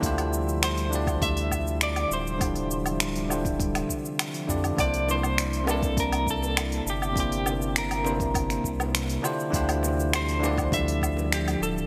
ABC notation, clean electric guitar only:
X:1
M:4/4
L:1/8
Q:1/4=101
K:Dm
V:1 name="Clean electric guitar"
z2 c2 e2 d c- | c3 z4 z | d c2 A B A2 G | G2 B4 z2 |
z2 c2 e2 G A |]